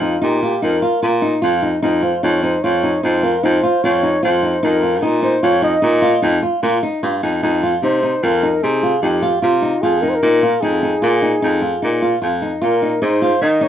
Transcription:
0.00 0.15 F2 medium
0.00 0.20 D#4 medium
0.00 0.25 F4 medium
0.22 0.55 A#2 medium
0.22 0.40 D#4 medium
0.22 0.44 G4 medium
0.43 0.60 F4 medium
0.43 0.63 G4 medium
0.62 0.79 F2 medium
0.62 0.80 D#4 medium
0.62 1.20 A#4 medium
0.82 1.00 F4 medium
1.02 1.35 A#2 medium
1.02 1.20 F4 medium
1.22 1.40 D#4 medium
1.42 1.75 F2 medium
1.42 1.60 F4 medium
1.62 1.80 D#4 medium
1.82 2.15 F2 medium
1.82 2.00 D#4 medium
2.02 2.20 F4 medium
2.02 2.24 C5 medium
2.22 2.55 F2 medium
2.22 2.40 D#4 medium
2.22 2.45 C#5 medium
2.43 2.60 D#4 medium
2.43 2.64 C5 medium
2.62 2.96 F2 medium
2.62 2.81 F4 medium
2.62 3.04 C#5 medium
2.83 3.00 D#4 medium
3.03 3.36 F2 medium
3.03 3.20 D#4 medium
3.03 3.25 C5 medium
3.23 3.40 F4 medium
3.23 3.45 A#4 medium
3.43 3.60 F2 medium
3.43 3.61 D#4 medium
3.43 3.85 C5 medium
3.63 3.81 F4 medium
3.84 4.16 F2 medium
3.84 4.01 F4 medium
3.84 4.25 C#5 loud
4.03 4.20 D#4 medium
4.23 4.56 F2 medium
4.23 4.40 F4 medium
4.23 4.66 C5 medium
4.43 4.60 D#4 medium
4.63 5.05 F2 medium
4.63 4.80 D#4 medium
4.63 5.04 A#4 medium
4.83 5.00 F4 medium
5.02 5.35 A#2 loud
5.02 5.20 D#4 medium
5.23 5.40 D#4 medium
5.23 5.45 C5 medium
5.43 5.75 F2 medium
5.43 5.60 F4 medium
5.43 5.63 C#5 loud
5.62 5.80 D#4 medium
5.62 6.40 D#5 medium
5.82 6.15 A#2 medium
5.82 6.00 D#4 medium
6.02 6.20 F4 medium
6.23 6.39 F2 medium
6.23 6.40 D#4 medium
6.43 6.60 F4 medium
6.63 6.79 A#2 loud
6.63 6.80 F4 medium
6.83 7.00 D#4 medium
7.03 7.21 G2 medium
7.03 7.20 F4 medium
7.23 7.41 F2 medium
7.23 7.40 D#4 medium
7.43 7.75 F2 medium
7.43 7.60 D#4 medium
7.63 7.80 F4 medium
7.82 8.14 C3 medium
7.82 8.00 D#4 medium
7.82 8.25 C5 medium
8.03 8.20 D#4 medium
8.22 8.54 F2 medium
8.22 8.40 F4 medium
8.22 8.64 A#4 medium
8.43 8.60 D#4 medium
8.63 8.95 C3 medium
8.63 8.80 D#4 medium
8.63 9.02 G#4 medium
8.83 9.00 F4 medium
9.02 9.34 F2 medium
9.02 9.20 D#4 medium
9.02 9.40 G4 medium
9.22 9.40 F4 medium
9.41 9.75 C3 medium
9.41 9.83 F4 medium
9.41 9.60 F4 medium
9.62 9.80 D#4 medium
9.82 10.15 F2 medium
9.82 10.00 F4 medium
9.82 10.02 G#4 medium
10.01 10.20 D#4 medium
10.01 10.11 A#4 medium
10.09 10.16 C5 medium
10.15 10.62 A#4 medium
10.22 10.54 A#2 loud
10.22 10.40 D#4 medium
10.43 10.60 F4 medium
10.61 10.95 F2 medium
10.61 10.80 D#4 medium
10.61 12.22 G#4 medium
10.83 11.00 D#4 medium
11.02 11.35 A#2 medium
11.02 11.20 F4 medium
11.22 11.40 D#4 medium
11.42 11.75 F2 medium
11.42 11.60 D#4 medium
11.62 11.80 F4 medium
11.82 12.15 A#2 medium
11.82 12.00 D#4 medium
12.02 12.20 F4 medium
12.22 12.54 F2 medium
12.22 12.40 F4 medium
12.42 12.60 D#4 medium
12.62 12.94 A#2 medium
12.62 12.79 F4 medium
12.62 13.04 A#4 medium
12.82 13.00 D#4 medium
13.02 13.34 G#2 medium
13.02 13.19 D#4 medium
13.02 13.44 C5 loud
13.22 13.39 F4 medium
13.42 13.68 D#3 medium
13.42 13.59 D#4 medium
13.42 13.65 D#5 medium
13.61 13.68 D#4 medium
13.61 13.68 C#5 medium

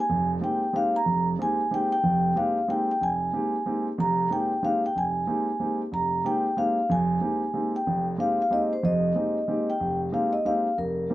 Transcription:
0.00 0.29 G#5 loud
0.09 0.37 F1 medium
0.09 0.37 F2 medium
0.41 0.63 G#3 medium
0.41 0.63 A#3 soft
0.41 0.63 C4 soft
0.41 0.63 D#4 soft
0.41 0.63 G4 medium
0.41 0.76 G5 medium
0.73 0.95 G#3 medium
0.73 0.95 A#3 soft
0.73 0.95 C4 soft
0.73 0.95 D#4 soft
0.73 0.95 G4 medium
0.73 0.96 F5 loud
0.96 1.25 A#5 loud
1.06 1.34 F1 medium
1.06 1.34 F2 medium
1.39 1.60 G#3 medium
1.39 1.60 A#3 soft
1.39 1.60 C4 soft
1.39 1.60 D#4 soft
1.39 1.60 G4 medium
1.39 1.70 G#5 loud
1.71 1.92 G#3 medium
1.71 1.92 A#3 soft
1.71 1.93 C4 soft
1.71 1.93 D#4 soft
1.71 1.93 G4 medium
1.71 1.91 G5 loud
1.92 2.38 G5 medium
2.03 2.31 F1 medium
2.03 2.31 F2 medium
2.36 2.57 G#3 medium
2.36 2.57 A#3 soft
2.36 2.57 C4 soft
2.36 2.57 D#4 soft
2.36 2.58 G4 medium
2.36 2.67 F5 medium
2.68 2.89 G#3 medium
2.68 2.90 A#3 soft
2.68 2.90 C4 medium
2.68 2.90 D#4 soft
2.68 2.90 G4 medium
2.68 2.90 G5 medium
2.91 3.02 G5 medium
3.01 3.29 F1 medium
3.01 3.83 G#5 medium
3.33 3.54 G#3 soft
3.33 3.55 A#3 soft
3.33 3.55 C4 soft
3.33 3.55 D#4 soft
3.33 3.55 G4 medium
3.66 3.87 G#3 soft
3.66 3.87 A#3 soft
3.66 3.87 C4 soft
3.66 3.87 D#4 soft
3.66 3.87 G4 medium
3.98 4.26 F1 medium
3.98 4.26 F2 medium
3.98 4.29 A#5 medium
4.31 4.52 G#3 medium
4.31 4.51 A#3 soft
4.31 4.52 C4 soft
4.31 4.52 D#4 soft
4.31 4.52 G4 medium
4.31 4.64 G5 medium
4.63 4.84 G#3 medium
4.63 4.84 A#3 soft
4.63 4.84 C4 soft
4.63 4.84 D#4 soft
4.63 4.84 G4 medium
4.63 4.73 F5 medium
4.86 4.96 G5 medium
4.96 5.23 F1 medium
4.96 5.77 G#5 medium
5.27 5.48 G#3 medium
5.27 5.48 A#3 medium
5.27 5.49 C4 soft
5.27 5.49 D#4 medium
5.27 5.49 G4 medium
5.60 5.81 G#3 soft
5.60 5.81 A#3 soft
5.60 5.81 C4 soft
5.60 5.81 D#4 soft
5.60 5.81 G4 medium
5.92 6.20 F1 medium
5.92 6.23 A#5 medium
6.25 6.46 G#3 medium
6.25 6.46 A#3 soft
6.25 6.46 C4 soft
6.25 6.46 D#4 soft
6.25 6.46 G4 medium
6.25 6.55 G5 loud
6.57 6.78 G#3 medium
6.57 6.78 A#3 medium
6.57 6.78 C4 soft
6.57 6.78 D#4 soft
6.57 6.78 G4 medium
6.57 6.91 F5 medium
6.89 7.17 F1 medium
6.89 7.17 F2 medium
6.89 7.71 G#5 medium
7.21 7.42 G#3 medium
7.21 7.43 A#3 soft
7.21 7.43 C4 soft
7.21 7.43 D#4 medium
7.21 7.43 G4 medium
7.54 7.75 G#3 medium
7.54 7.75 A#3 soft
7.54 7.75 C4 soft
7.54 7.75 D#4 soft
7.54 7.75 G4 medium
7.76 8.05 G5 medium
7.87 8.14 F1 medium
7.87 8.14 F2 medium
8.18 8.39 G#3 medium
8.18 8.40 A#3 soft
8.18 8.40 C4 soft
8.18 8.40 D#4 soft
8.18 8.40 G4 medium
8.18 8.40 F5 medium
8.42 8.52 F5 medium
8.51 8.72 G#3 medium
8.51 8.72 A#3 soft
8.51 8.72 C4 medium
8.51 8.72 D#4 soft
8.51 8.72 G4 medium
8.51 8.70 D#5 medium
8.73 8.83 C5 medium
8.83 9.11 F1 medium
8.83 9.11 F2 medium
8.83 9.71 D#5 medium
9.15 9.37 G#3 soft
9.15 9.37 A#3 soft
9.15 9.37 C4 soft
9.15 9.37 D#4 medium
9.15 9.37 G4 medium
9.48 9.69 G#3 medium
9.48 9.69 A#3 soft
9.48 9.69 C4 soft
9.48 9.69 D#4 soft
9.48 9.69 G4 medium
9.70 9.99 G5 medium
9.80 10.08 F1 medium
10.12 10.34 G#3 medium
10.12 10.34 A#3 medium
10.12 10.34 C4 soft
10.12 10.34 D#4 soft
10.12 10.34 G4 medium
10.12 10.32 F5 medium
10.33 10.45 D#5 medium
10.45 10.66 G#3 medium
10.45 10.66 A#3 soft
10.45 10.66 C4 soft
10.45 10.66 D#4 medium
10.45 10.67 G4 medium
10.45 10.75 F5 medium
10.78 11.05 F1 medium
10.78 11.14 A#4 medium
11.10 11.14 G#3 medium
11.10 11.14 A#3 soft
11.10 11.14 C4 soft
11.10 11.14 D#4 soft
11.10 11.14 G4 medium

